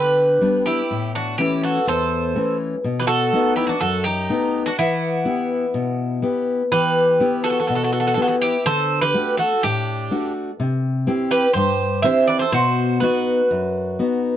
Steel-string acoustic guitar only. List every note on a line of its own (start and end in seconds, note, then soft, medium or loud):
0.00 0.40 D3 medium
0.41 0.80 G3 soft
0.41 0.80 B3 soft
0.41 0.81 D4 soft
0.91 1.37 A2 medium
1.39 1.77 E3 soft
1.39 1.78 A3 soft
1.39 1.78 C#4 medium
1.87 2.34 E2 medium
2.35 2.74 E3 soft
2.35 2.74 A3 soft
2.35 2.75 C#4 medium
2.84 3.31 B2 medium
3.33 3.72 A3 medium
3.33 3.72 B3 soft
3.33 3.72 D#4 medium
3.81 4.28 F#2 medium
4.30 4.68 A3 soft
4.30 4.68 B3 soft
4.30 4.69 D#4 medium
4.79 5.25 E3 medium
5.25 5.64 B3 soft
5.25 5.65 E4 soft
5.25 5.65 G4 medium
5.74 6.21 B2 medium
6.22 6.61 B3 soft
6.22 6.62 E4 soft
6.22 6.62 G4 medium
6.72 7.19 E3 medium
7.20 7.59 B3 medium
7.20 7.59 E4 soft
7.20 7.59 G4 medium
7.69 8.16 B2 medium
8.17 8.56 B3 medium
8.17 8.56 E4 soft
8.17 8.56 G4 medium
8.66 9.13 D3 medium
9.14 9.53 A3 medium
9.14 9.53 D4 soft
9.14 9.53 F#4 medium
9.64 10.10 A2 medium
10.11 10.50 A3 soft
10.11 10.50 D4 soft
10.11 10.50 F#4 medium
10.60 11.06 C3 medium
11.07 11.46 C4 medium
11.07 11.46 E4 soft
11.07 11.47 G4 medium
11.55 12.03 G2 medium
12.04 12.43 C4 soft
12.04 12.43 E4 soft
12.04 12.44 G4 medium
12.52 13.00 B2 medium
13.02 13.40 B3 soft
13.02 13.41 D#4 soft
13.02 13.41 F#4 medium
13.51 13.98 F#2 medium
13.99 14.37 B3 soft
13.99 14.37 D#4 soft
13.99 14.37 F#4 medium